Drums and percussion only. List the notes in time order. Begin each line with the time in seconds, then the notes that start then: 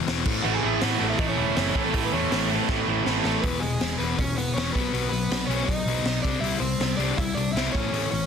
0.08 snare, open hi-hat
0.26 kick, crash
0.81 snare, open hi-hat
1.19 kick, open hi-hat
1.56 snare, open hi-hat
1.75 kick
1.94 kick, open hi-hat
2.32 snare, open hi-hat
2.69 kick, snare
3.06 snare
3.25 snare
3.44 kick, open hi-hat
3.63 open hi-hat
3.81 snare, open hi-hat
4.00 open hi-hat
4.19 kick, open hi-hat
4.38 open hi-hat
4.58 snare, open hi-hat
4.75 kick, open hi-hat
4.95 open hi-hat
5.13 open hi-hat
5.32 snare, open hi-hat
5.51 open hi-hat
5.68 kick, open hi-hat
5.88 open hi-hat
6.05 snare, open hi-hat
6.25 kick, open hi-hat
6.44 open hi-hat
6.62 open hi-hat
6.81 snare, open hi-hat
7.00 open hi-hat
7.18 kick, open hi-hat
7.37 open hi-hat
7.57 snare, open hi-hat
7.75 kick, open hi-hat
7.94 open hi-hat
8.14 open hi-hat